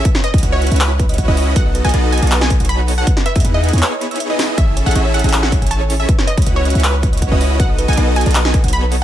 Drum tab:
HH |x---x-xxx---xxxxx---x-xxx---o---|x---x-xxx---xxxxx---x-xxx---o---|x---x-xxx---xxxxx---x-xxx---o---|x---x-xxx---xxxxx---x-xxx---o---|
CP |----------------x---------------|----------------x---------------|----------------x---------------|----------------x---------------|
SD |--o-----------------------------|------------------o-------------|--o-------------------------o---|------------------o-------------|
BD |o-----o-------------o---o-------|o-------------------o-----------|o-----o-------------------------|o-------------------o-----------|

HH |x---x-xxx---xxxxx---x-xxx---o---|x---x-xxx---xxxxx---x-xxx---o---|
CP |----------------x---------------|----------------x---------------|
SD |--o-----------------------------|------------------o-------------|
BD |o-----o-------------o---o-------|o-------------------o-----------|